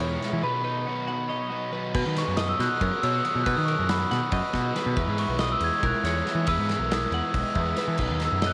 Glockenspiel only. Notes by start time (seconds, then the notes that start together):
Already playing: C#6
0.44 B5
2.18 C#6
2.37 D#6
2.49 E6
2.61 F#6
3.02 E6
3.23 D#6
3.44 F#6
3.54 D#6
3.66 C#6
3.89 B5
5.19 C#6
5.41 D#6
5.52 E6
5.64 G#6
5.86 F#6
6.48 E6
6.93 D#6
8.25 E6
8.47 F#6